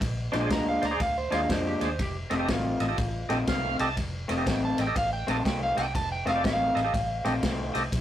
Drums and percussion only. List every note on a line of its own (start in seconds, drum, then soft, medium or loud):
0.01 kick medium
0.01 snare soft
0.01 ride medium
0.33 snare soft
0.33 ride medium
0.50 kick medium
0.50 snare loud
0.50 ride medium
0.82 snare soft
0.82 ride medium
1.00 kick medium
1.00 snare soft
1.00 ride medium
1.32 snare soft
1.32 ride medium
1.50 kick medium
1.50 snare loud
1.50 ride medium
1.81 snare soft
1.81 ride medium
1.99 kick medium
1.99 snare soft
1.99 ride medium
2.31 snare soft
2.31 ride medium
2.48 kick medium
2.48 snare loud
2.48 ride medium
2.80 snare soft
2.80 ride medium
2.98 kick medium
2.98 snare soft
2.98 ride medium
3.30 snare soft
3.30 ride medium
3.47 kick medium
3.47 snare loud
3.47 ride medium
3.79 snare soft
3.79 ride medium
3.97 kick medium
3.97 snare soft
3.97 ride medium
4.29 snare soft
4.29 ride medium
4.46 kick medium
4.46 snare loud
4.46 ride medium
4.78 snare soft
4.78 ride medium
4.96 kick medium
4.96 snare soft
4.96 ride medium
5.28 snare soft
5.28 ride medium
5.45 kick medium
5.45 snare loud
5.45 ride medium
5.77 snare soft
5.77 ride medium
5.95 kick medium
5.95 snare soft
5.95 ride medium
6.27 snare soft
6.27 ride medium
6.44 kick medium
6.44 snare loud
6.44 ride medium
6.77 snare soft
6.77 ride medium
6.94 kick medium
6.94 snare soft
6.94 ride medium
7.25 snare soft
7.25 ride medium
7.43 kick medium
7.43 snare loud
7.43 ride medium
7.75 snare soft
7.75 ride medium
7.92 kick medium
7.92 snare soft
7.92 ride medium